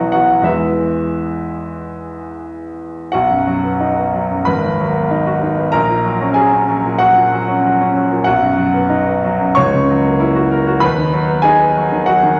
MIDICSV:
0, 0, Header, 1, 2, 480
1, 0, Start_track
1, 0, Key_signature, 4, "major"
1, 0, Tempo, 665927
1, 327, Time_signature, 4, 2, 24, 8
1, 2261, Key_signature, 5, "major"
1, 3686, Tempo, 630915
1, 6086, Tempo, 650759
1, 7046, Tempo, 623701
1, 9223, End_track
2, 0, Start_track
2, 0, Title_t, "Grand piano"
2, 0, Program_c, 0, 0
2, 0, Control_c, 0, 64, 127
2, 0, Note_on_c, 0, 35, 64
2, 0, Note_on_c, 0, 52, 41
2, 0, Note_on_c, 0, 54, 49
2, 0, Note_on_c, 0, 59, 46
2, 0, Note_on_c, 0, 63, 55
2, 0, Note_on_c, 0, 66, 61
2, 0, Note_on_c, 0, 75, 63
2, 0, Note_on_c, 0, 78, 75
2, 76, Note_off_c, 0, 78, 0
2, 87, Note_on_c, 0, 78, 70
2, 93, Note_off_c, 0, 52, 0
2, 95, Note_off_c, 0, 66, 0
2, 95, Note_on_c, 0, 66, 54
2, 102, Note_off_c, 0, 59, 0
2, 102, Note_on_c, 0, 59, 45
2, 217, Note_off_c, 0, 54, 0
2, 217, Note_on_c, 0, 54, 45
2, 286, Note_off_c, 0, 59, 0
2, 300, Note_on_c, 0, 40, 55
2, 304, Note_off_c, 0, 35, 0
2, 310, Note_on_c, 0, 56, 43
2, 315, Note_off_c, 0, 66, 0
2, 317, Note_on_c, 0, 59, 46
2, 318, Note_on_c, 0, 76, 64
2, 327, Note_off_c, 0, 78, 0
2, 329, Note_on_c, 0, 64, 48
2, 330, Note_on_c, 0, 71, 45
2, 333, Note_off_c, 0, 54, 0
2, 339, Control_c, 0, 64, 0
2, 342, Note_off_c, 0, 63, 0
2, 347, Note_off_c, 0, 75, 0
2, 474, Control_c, 0, 64, 127
2, 1992, Note_off_c, 0, 64, 0
2, 1992, Note_off_c, 0, 71, 0
2, 2015, Note_off_c, 0, 76, 0
2, 2219, Note_off_c, 0, 40, 0
2, 2224, Note_off_c, 0, 56, 0
2, 2227, Note_off_c, 0, 59, 0
2, 2247, Note_on_c, 0, 78, 72
2, 2254, Note_on_c, 0, 66, 63
2, 2266, Note_on_c, 0, 35, 66
2, 2276, Control_c, 0, 64, 0
2, 2382, Note_on_c, 0, 42, 50
2, 2401, Control_c, 0, 64, 127
2, 2500, Note_on_c, 0, 54, 51
2, 2571, Note_off_c, 0, 42, 0
2, 2620, Note_on_c, 0, 59, 44
2, 2690, Note_off_c, 0, 54, 0
2, 2740, Note_on_c, 0, 63, 53
2, 2810, Note_off_c, 0, 59, 0
2, 2855, Note_on_c, 0, 59, 41
2, 2931, Note_off_c, 0, 63, 0
2, 2977, Note_on_c, 0, 54, 46
2, 3051, Note_off_c, 0, 59, 0
2, 3101, Note_on_c, 0, 42, 42
2, 3171, Note_off_c, 0, 54, 0
2, 3187, Note_off_c, 0, 66, 0
2, 3193, Note_off_c, 0, 35, 0
2, 3208, Note_on_c, 0, 83, 84
2, 3213, Note_off_c, 0, 78, 0
2, 3216, Note_on_c, 0, 71, 58
2, 3220, Note_off_c, 0, 42, 0
2, 3222, Note_on_c, 0, 32, 67
2, 3232, Control_c, 0, 64, 0
2, 3340, Note_on_c, 0, 39, 42
2, 3344, Control_c, 0, 64, 127
2, 3458, Note_on_c, 0, 54, 51
2, 3526, Note_off_c, 0, 39, 0
2, 3566, Note_on_c, 0, 59, 45
2, 3642, Note_off_c, 0, 54, 0
2, 3681, Note_on_c, 0, 63, 54
2, 3755, Note_off_c, 0, 59, 0
2, 3802, Note_on_c, 0, 66, 53
2, 3875, Note_off_c, 0, 63, 0
2, 3924, Note_on_c, 0, 63, 51
2, 3994, Note_off_c, 0, 66, 0
2, 4046, Note_on_c, 0, 59, 50
2, 4114, Note_off_c, 0, 63, 0
2, 4130, Note_off_c, 0, 71, 0
2, 4135, Note_off_c, 0, 32, 0
2, 4146, Note_on_c, 0, 82, 84
2, 4151, Note_on_c, 0, 70, 67
2, 4156, Note_off_c, 0, 83, 0
2, 4157, Note_on_c, 0, 34, 70
2, 4164, Note_off_c, 0, 59, 0
2, 4177, Control_c, 0, 64, 0
2, 4281, Note_on_c, 0, 46, 52
2, 4296, Control_c, 0, 64, 127
2, 4398, Note_on_c, 0, 54, 50
2, 4475, Note_off_c, 0, 46, 0
2, 4520, Note_on_c, 0, 61, 51
2, 4595, Note_off_c, 0, 54, 0
2, 4609, Note_off_c, 0, 70, 0
2, 4619, Note_on_c, 0, 80, 77
2, 4632, Note_on_c, 0, 68, 57
2, 4637, Note_off_c, 0, 82, 0
2, 4638, Note_on_c, 0, 54, 55
2, 4716, Note_off_c, 0, 61, 0
2, 4764, Note_on_c, 0, 61, 43
2, 4835, Note_off_c, 0, 54, 0
2, 4883, Note_on_c, 0, 54, 54
2, 4958, Note_off_c, 0, 61, 0
2, 5006, Note_on_c, 0, 46, 43
2, 5078, Note_off_c, 0, 54, 0
2, 5091, Note_off_c, 0, 68, 0
2, 5110, Note_on_c, 0, 78, 90
2, 5115, Note_off_c, 0, 80, 0
2, 5118, Note_on_c, 0, 66, 65
2, 5125, Note_on_c, 0, 54, 52
2, 5200, Note_off_c, 0, 46, 0
2, 5244, Note_on_c, 0, 46, 47
2, 5320, Note_off_c, 0, 54, 0
2, 5363, Note_on_c, 0, 54, 53
2, 5439, Note_off_c, 0, 46, 0
2, 5486, Note_on_c, 0, 61, 50
2, 5558, Note_off_c, 0, 54, 0
2, 5610, Note_on_c, 0, 54, 54
2, 5679, Note_off_c, 0, 61, 0
2, 5738, Note_on_c, 0, 61, 56
2, 5800, Note_off_c, 0, 54, 0
2, 5858, Note_on_c, 0, 54, 48
2, 5924, Note_off_c, 0, 61, 0
2, 5970, Note_on_c, 0, 46, 51
2, 6045, Note_off_c, 0, 54, 0
2, 6052, Note_off_c, 0, 66, 0
2, 6055, Note_off_c, 0, 34, 0
2, 6056, Note_off_c, 0, 78, 0
2, 6067, Note_on_c, 0, 78, 87
2, 6081, Note_on_c, 0, 66, 65
2, 6087, Note_on_c, 0, 35, 67
2, 6089, Note_off_c, 0, 46, 0
2, 6103, Control_c, 0, 64, 0
2, 6195, Note_on_c, 0, 42, 57
2, 6210, Control_c, 0, 64, 127
2, 6306, Note_on_c, 0, 54, 52
2, 6388, Note_off_c, 0, 42, 0
2, 6436, Note_on_c, 0, 59, 56
2, 6503, Note_off_c, 0, 54, 0
2, 6549, Note_on_c, 0, 63, 61
2, 6629, Note_off_c, 0, 59, 0
2, 6674, Note_on_c, 0, 59, 47
2, 6748, Note_off_c, 0, 63, 0
2, 6801, Note_on_c, 0, 54, 57
2, 6874, Note_off_c, 0, 59, 0
2, 6918, Note_on_c, 0, 42, 53
2, 6998, Note_off_c, 0, 54, 0
2, 7014, Note_off_c, 0, 66, 0
2, 7018, Note_off_c, 0, 35, 0
2, 7030, Note_on_c, 0, 85, 93
2, 7037, Note_off_c, 0, 78, 0
2, 7042, Note_on_c, 0, 73, 73
2, 7043, Note_off_c, 0, 42, 0
2, 7045, Note_on_c, 0, 37, 75
2, 7060, Control_c, 0, 64, 0
2, 7173, Control_c, 0, 64, 127
2, 7176, Note_on_c, 0, 49, 50
2, 7301, Note_on_c, 0, 54, 60
2, 7366, Note_off_c, 0, 49, 0
2, 7415, Note_on_c, 0, 58, 54
2, 7487, Note_off_c, 0, 54, 0
2, 7530, Note_on_c, 0, 64, 66
2, 7604, Note_off_c, 0, 58, 0
2, 7649, Note_on_c, 0, 66, 62
2, 7721, Note_off_c, 0, 64, 0
2, 7772, Note_on_c, 0, 70, 63
2, 7840, Note_off_c, 0, 66, 0
2, 7894, Note_on_c, 0, 66, 64
2, 7961, Note_off_c, 0, 70, 0
2, 7975, Note_off_c, 0, 73, 0
2, 7978, Note_off_c, 0, 37, 0
2, 7995, Note_on_c, 0, 83, 99
2, 7999, Note_off_c, 0, 85, 0
2, 8002, Note_on_c, 0, 71, 74
2, 8009, Note_on_c, 0, 39, 80
2, 8011, Note_off_c, 0, 66, 0
2, 8022, Control_c, 0, 64, 0
2, 8131, Note_on_c, 0, 51, 59
2, 8154, Control_c, 0, 64, 127
2, 8248, Note_on_c, 0, 54, 58
2, 8322, Note_off_c, 0, 51, 0
2, 8361, Note_on_c, 0, 59, 55
2, 8441, Note_off_c, 0, 54, 0
2, 8456, Note_off_c, 0, 71, 0
2, 8470, Note_on_c, 0, 80, 101
2, 8481, Note_on_c, 0, 68, 69
2, 8483, Note_off_c, 0, 83, 0
2, 8489, Note_on_c, 0, 63, 67
2, 8558, Note_off_c, 0, 59, 0
2, 8608, Note_on_c, 0, 59, 54
2, 8681, Note_off_c, 0, 63, 0
2, 8737, Note_on_c, 0, 54, 55
2, 8800, Note_off_c, 0, 59, 0
2, 8854, Note_on_c, 0, 51, 49
2, 8924, Note_off_c, 0, 54, 0
2, 8933, Note_off_c, 0, 68, 0
2, 8959, Note_off_c, 0, 80, 0
2, 8963, Note_on_c, 0, 78, 80
2, 8969, Note_on_c, 0, 66, 63
2, 8973, Note_on_c, 0, 54, 56
2, 9043, Note_off_c, 0, 51, 0
2, 9094, Note_on_c, 0, 51, 54
2, 9162, Note_off_c, 0, 54, 0
2, 9223, Note_off_c, 0, 39, 0
2, 9223, Note_off_c, 0, 51, 0
2, 9223, Note_off_c, 0, 66, 0
2, 9223, Note_off_c, 0, 78, 0
2, 9223, End_track
0, 0, End_of_file